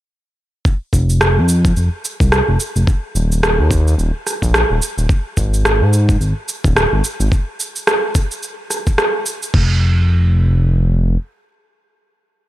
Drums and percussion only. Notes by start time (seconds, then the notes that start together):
0.65 kick, cabasa
0.93 kick, cabasa
1.10 cabasa
1.21 cross-stick, cabasa
1.48 cabasa
1.65 kick, cabasa
1.77 cabasa
2.05 cabasa
2.20 kick, cabasa
2.32 cross-stick, cabasa
2.60 cabasa
2.76 cabasa
2.87 kick, cabasa
3.16 cabasa
3.32 cabasa
3.43 cross-stick, cabasa
3.71 kick, cabasa
3.87 cabasa
3.99 cabasa
4.27 cross-stick, cabasa
4.42 kick, cabasa
4.54 cross-stick, cabasa
4.82 cabasa
4.98 cabasa
5.09 kick, cabasa
5.37 kick, cabasa
5.54 cabasa
5.65 cross-stick, cabasa
5.93 cabasa
6.09 kick, cabasa
6.21 cabasa
6.48 cabasa
6.64 kick, cabasa
6.76 cross-stick, cabasa
7.04 cabasa
7.20 cabasa
7.32 kick, cabasa
7.60 cabasa
7.76 cabasa
7.87 cross-stick, cabasa
8.15 kick, cabasa
8.31 cabasa
8.43 cabasa
8.70 cross-stick, cabasa
8.87 kick, cabasa
8.98 cross-stick, cabasa
9.26 cabasa
9.43 cabasa
9.54 kick, crash